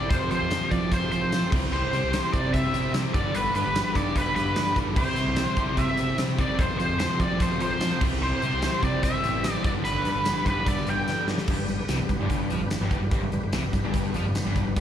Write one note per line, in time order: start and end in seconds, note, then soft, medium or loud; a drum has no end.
0.00 0.11 G3 medium
0.00 1.53 C4 medium
0.09 0.29 F2 loud
0.09 0.18 F2 loud
0.09 0.30 C3 loud
0.09 0.30 F3 loud
0.09 1.51 C4 medium
0.09 1.51 F4 medium
0.09 1.51 G4 medium
0.09 1.51 A4 medium
0.09 0.30 C5 medium
0.09 kick loud
0.09 closed hi-hat loud
0.30 0.49 F2 medium
0.30 0.50 C3 loud
0.30 0.51 F3 loud
0.30 0.39 F3 medium
0.30 0.73 C5 medium
0.30 closed hi-hat medium
0.42 0.57 F2 medium
0.50 0.70 F2 loud
0.50 0.71 C3 loud
0.50 0.71 F3 loud
0.50 snare loud
0.50 closed hi-hat loud
0.50 tambourine loud
0.71 0.91 F2 medium
0.71 0.92 C3 loud
0.71 1.02 F3 medium
0.71 0.92 F3 loud
0.71 0.92 D5 medium
0.71 kick medium
0.71 closed hi-hat medium
0.92 1.11 F2 loud
0.92 1.12 C3 loud
0.92 1.12 F3 loud
0.92 1.11 C5 medium
0.92 kick medium
0.92 closed hi-hat loud
1.12 1.32 F2 loud
1.12 1.32 C3 loud
1.12 1.43 F3 medium
1.12 1.33 F3 loud
1.12 1.49 C5 medium
1.12 closed hi-hat medium
1.32 1.52 F2 loud
1.32 1.51 C3 medium
1.32 1.52 F3 medium
1.32 snare loud
1.32 closed hi-hat loud
1.32 tambourine loud
1.32 tambourine medium
1.52 1.83 C2 loud
1.52 1.71 C3 loud
1.52 1.73 G3 loud
1.52 3.13 C4 medium
1.52 1.72 C4 loud
1.52 3.13 E4 medium
1.52 3.13 G4 medium
1.52 3.12 C5 medium
1.52 kick loud
1.52 crash loud
1.72 1.92 C3 loud
1.72 1.93 G3 loud
1.72 1.93 C4 loud
1.72 2.35 C5 medium
1.93 2.00 C3 loud
1.93 2.13 C3 medium
1.93 2.14 G3 loud
1.93 2.14 C4 loud
1.93 closed hi-hat medium
2.03 2.18 C2 medium
2.13 2.32 C3 loud
2.13 2.33 G3 loud
2.13 2.33 C4 loud
2.13 snare loud
2.13 closed hi-hat loud
2.13 tambourine medium
2.13 tambourine loud
2.32 2.53 C3 medium
2.32 2.64 C3 medium
2.32 2.54 G3 medium
2.32 2.53 C4 medium
2.32 2.53 D5 medium
2.32 kick medium
2.32 closed hi-hat medium
2.54 2.73 C3 loud
2.54 2.75 G3 loud
2.54 2.74 C4 loud
2.54 2.91 E5 loud
2.54 kick medium
2.54 closed hi-hat loud
2.74 2.93 C3 medium
2.74 3.05 C3 medium
2.74 2.95 G3 loud
2.74 2.95 C4 loud
2.74 closed hi-hat medium
2.94 3.13 C3 medium
2.94 3.16 G3 medium
2.94 3.14 C4 loud
2.94 snare loud
2.94 closed hi-hat loud
2.94 tambourine loud
2.94 tambourine medium
3.14 3.45 G1 medium
3.14 3.34 G2 loud
3.14 3.34 D3 loud
3.14 3.35 G3 loud
3.14 4.95 B3 medium
3.14 4.95 D4 medium
3.14 4.95 G4 medium
3.14 4.95 B4 medium
3.14 3.35 D5 medium
3.14 kick loud
3.14 closed hi-hat medium
3.35 3.53 G2 loud
3.35 3.54 D3 loud
3.35 3.54 G3 loud
3.35 3.54 B4 medium
3.35 closed hi-hat loud
3.54 3.73 G2 medium
3.54 3.63 G2 medium
3.54 3.73 D3 medium
3.54 3.75 G3 loud
3.54 3.97 B4 medium
3.54 closed hi-hat medium
3.66 3.81 G1 medium
3.74 3.93 G2 loud
3.74 3.94 D3 loud
3.74 3.95 G3 loud
3.74 snare loud
3.74 closed hi-hat loud
3.74 tambourine loud
3.95 4.14 G2 medium
3.95 4.26 G2 medium
3.95 4.14 D3 medium
3.95 4.15 G3 loud
3.95 4.16 D5 medium
3.95 kick medium
3.95 closed hi-hat medium
4.15 4.35 G2 loud
4.15 4.36 D3 loud
4.15 4.37 G3 loud
4.15 4.35 B4 medium
4.15 kick medium
4.15 closed hi-hat loud
4.36 4.82 G2 medium
4.36 4.55 G2 loud
4.36 4.56 D3 loud
4.36 4.57 G3 loud
4.36 4.73 B4 medium
4.36 closed hi-hat medium
4.56 4.75 G2 medium
4.56 4.76 D3 medium
4.56 4.77 G3 medium
4.56 snare loud
4.56 closed hi-hat medium
4.56 tambourine loud
4.56 tambourine medium
4.76 4.95 G2 medium
4.76 4.96 D3 medium
4.76 4.97 G3 loud
4.76 kick medium
4.76 closed hi-hat medium
4.96 5.04 C2 loud
4.96 5.16 C3 medium
4.96 5.17 G3 loud
4.96 6.57 C4 medium
4.96 5.18 C4 loud
4.96 6.58 E4 medium
4.96 6.57 G4 medium
4.96 6.57 C5 medium
4.96 5.80 C5 medium
4.96 kick loud
4.96 crash loud
5.16 5.25 C3 medium
5.16 5.35 C3 medium
5.16 5.37 G3 medium
5.16 5.37 C4 loud
5.16 closed hi-hat medium
5.27 5.43 C2 loud
5.36 5.56 C3 medium
5.36 5.57 G3 loud
5.36 5.58 C4 loud
5.36 snare loud
5.36 closed hi-hat loud
5.36 tambourine loud
5.56 5.88 C3 medium
5.56 5.75 C3 medium
5.56 5.77 G3 medium
5.56 5.78 C4 medium
5.56 kick medium
5.56 closed hi-hat medium
5.76 5.95 C3 medium
5.76 5.96 G3 loud
5.76 5.97 C4 loud
5.76 6.16 E5 loud
5.76 kick loud
5.76 closed hi-hat loud
5.97 6.16 C3 loud
5.97 6.44 C3 medium
5.97 6.17 G3 loud
5.97 6.18 C4 loud
5.97 closed hi-hat medium
6.17 6.36 C3 medium
6.17 6.38 G3 medium
6.17 6.38 C4 medium
6.17 snare loud
6.17 closed hi-hat loud
6.17 tambourine loud
6.17 tambourine medium
6.37 6.57 C3 medium
6.37 6.58 G3 loud
6.37 8.01 C4 loud
6.37 6.60 D5 loud
6.37 kick loud
6.37 closed hi-hat medium
6.57 6.76 F2 loud
6.57 6.67 F2 loud
6.57 6.77 C3 loud
6.57 6.77 F3 loud
6.57 8.00 C4 medium
6.57 8.00 F4 medium
6.57 8.00 G4 medium
6.57 8.00 A4 medium
6.57 6.77 C5 medium
6.57 kick loud
6.57 closed hi-hat loud
6.78 6.98 F2 medium
6.78 6.98 C3 loud
6.78 6.99 F3 loud
6.78 6.87 F3 medium
6.78 6.98 C5 medium
6.78 closed hi-hat medium
6.89 7.05 F2 medium
6.99 7.18 F2 medium
6.99 7.19 C3 loud
6.99 7.20 F3 loud
6.99 7.21 C5 medium
6.99 snare loud
6.99 closed hi-hat loud
6.99 tambourine loud
7.20 7.38 F2 medium
7.20 7.39 C3 medium
7.20 7.51 F3 medium
7.20 7.39 F3 loud
7.20 7.41 D5 medium
7.20 kick medium
7.20 closed hi-hat medium
7.39 7.58 F2 loud
7.39 7.59 C3 loud
7.39 7.59 F3 loud
7.39 7.61 C5 loud
7.39 kick loud
7.39 closed hi-hat loud
7.59 7.78 F2 medium
7.59 7.79 C3 loud
7.59 7.80 F3 loud
7.59 7.92 F3 loud
7.59 7.99 C5 loud
7.59 closed hi-hat medium
7.80 7.99 F2 medium
7.80 7.99 C3 medium
7.80 8.00 F3 loud
7.80 snare loud
7.80 closed hi-hat loud
7.80 tambourine loud
7.80 tambourine medium
8.00 8.32 C2 medium
8.00 8.20 C3 loud
8.00 8.22 G3 loud
8.00 8.21 C4 loud
8.00 9.63 C4 medium
8.00 9.63 E4 medium
8.00 9.63 G4 medium
8.00 9.63 C5 medium
8.00 kick loud
8.00 crash loud
8.21 8.40 C3 loud
8.21 8.42 G3 loud
8.21 8.42 C4 loud
8.21 8.85 C5 loud
8.42 8.61 C3 medium
8.42 8.50 C3 medium
8.42 8.62 G3 loud
8.42 8.62 C4 medium
8.42 closed hi-hat medium
8.53 8.68 C2 medium
8.62 8.81 C3 loud
8.62 8.83 G3 loud
8.62 8.82 C4 loud
8.62 snare loud
8.62 closed hi-hat loud
8.62 tambourine loud
8.82 9.01 C3 medium
8.82 9.14 C3 medium
8.82 9.03 G3 medium
8.82 9.02 C4 loud
8.82 9.04 D5 loud
8.82 kick medium
8.82 closed hi-hat medium
9.02 9.22 C3 loud
9.02 9.23 G3 loud
9.02 9.23 C4 loud
9.02 9.52 E5 loud
9.02 kick medium
9.02 closed hi-hat loud
9.23 9.55 A1 medium
9.23 9.43 C3 loud
9.23 9.44 G3 loud
9.23 9.44 C4 loud
9.23 closed hi-hat medium
9.44 9.63 C3 medium
9.44 9.64 G3 medium
9.44 9.64 C4 medium
9.44 snare loud
9.44 closed hi-hat loud
9.44 tambourine loud
9.52 9.64 D5 loud
9.64 9.95 G1 loud
9.64 9.83 G2 loud
9.64 9.84 D3 loud
9.64 9.84 G3 loud
9.64 11.47 B3 medium
9.64 11.46 D4 medium
9.64 11.46 G4 medium
9.64 11.47 B4 medium
9.64 9.70 D5 loud
9.64 kick loud
9.64 closed hi-hat medium
9.84 10.04 G2 loud
9.84 10.04 D3 loud
9.84 10.05 G3 loud
9.84 10.46 B4 medium
9.84 closed hi-hat loud
10.05 10.24 G2 loud
10.05 10.13 G2 medium
10.05 10.25 D3 medium
10.05 10.26 G3 loud
10.05 closed hi-hat medium
10.15 10.31 G1 medium
10.25 10.45 G2 loud
10.25 10.45 D3 loud
10.25 10.46 G3 loud
10.25 snare loud
10.25 closed hi-hat loud
10.25 tambourine loud
10.46 10.66 G2 medium
10.46 10.77 G2 medium
10.46 10.66 D3 medium
10.46 10.67 G3 medium
10.46 10.67 B4 medium
10.46 kick medium
10.46 closed hi-hat medium
10.66 10.87 G2 loud
10.66 10.87 D3 loud
10.66 10.87 G3 loud
10.66 10.88 D5 loud
10.66 kick loud
10.66 closed hi-hat loud
10.87 11.34 G2 medium
10.87 11.07 G2 loud
10.87 11.07 D3 loud
10.87 11.08 G3 loud
10.87 11.26 G5 medium
10.87 closed hi-hat medium
11.08 11.27 G2 medium
11.08 11.27 D3 medium
11.08 11.28 G3 medium
11.08 snare medium
11.08 tambourine loud
11.28 11.47 G2 medium
11.28 11.47 D3 medium
11.28 11.48 G3 loud
11.28 snare loud
11.38 snare loud
11.48 11.58 G1 loud
11.48 11.57 G2 loud
11.48 14.74 B3 medium
11.48 14.74 D4 medium
11.48 14.74 G4 medium
11.48 14.74 B4 medium
11.48 kick loud
11.48 crash loud
11.58 11.68 G1 medium
11.58 11.66 G2 medium
11.68 11.78 G1 medium
11.68 11.78 G2 medium
11.68 closed hi-hat medium
11.79 muted distorted electric guitar stroke medium
11.79 muted overdriven electric guitar stroke medium
11.79 muted fingered electric bass stroke soft
11.88 11.99 C2 medium
11.88 11.99 C3 loud
11.88 snare loud
11.88 closed hi-hat loud
11.88 tambourine loud
11.99 12.09 G1 medium
11.99 12.09 G2 medium
12.09 12.19 G1 medium
12.09 12.19 G2 medium
12.09 kick medium
12.09 closed hi-hat medium
12.20 12.49 G1 loud
12.20 12.50 G2 loud
12.30 kick medium
12.30 closed hi-hat medium
12.50 12.60 F2 medium
12.50 12.60 F3 loud
12.50 closed hi-hat medium
12.61 12.80 G1 medium
12.61 12.78 G2 medium
12.70 snare loud
12.70 closed hi-hat medium
12.70 tambourine loud
12.81 13.00 G1 medium
12.81 13.01 G2 loud
12.91 kick medium
12.91 closed hi-hat medium
13.01 13.11 G1 medium
13.01 13.12 G2 medium
13.11 13.21 G1 loud
13.11 13.22 G2 loud
13.11 kick loud
13.11 closed hi-hat loud
13.21 13.31 G1 medium
13.21 13.32 G2 medium
13.32 13.42 G1 medium
13.32 13.42 G2 medium
13.32 closed hi-hat medium
13.43 muted fingered electric bass stroke soft
13.43 muted overdriven electric guitar stroke medium
13.43 muted distorted electric guitar stroke medium
13.53 13.63 C2 loud
13.53 13.63 C3 loud
13.53 snare loud
13.53 closed hi-hat loud
13.53 tambourine loud
13.63 13.73 G1 medium
13.63 13.73 G2 medium
13.73 13.83 G1 medium
13.73 13.83 G2 medium
13.73 kick medium
13.73 closed hi-hat medium
13.84 14.13 G1 loud
13.84 14.14 G2 loud
13.94 kick medium
13.94 closed hi-hat loud
14.14 14.25 F2 medium
14.14 14.25 F3 loud
14.14 closed hi-hat medium
14.25 14.45 G1 medium
14.25 14.42 G2 medium
14.35 snare loud
14.35 closed hi-hat loud
14.35 tambourine medium
14.35 tambourine loud
14.46 14.65 G1 loud
14.46 14.66 G2 loud
14.56 kick medium
14.56 closed hi-hat medium
14.67 14.76 G1 medium
14.67 14.76 G2 medium
14.76 14.80 G1 loud
14.76 14.80 G2 loud
14.76 14.80 B3 medium
14.76 14.80 D4 medium
14.76 14.80 G4 medium
14.76 14.80 B4 medium
14.76 kick loud
14.76 closed hi-hat loud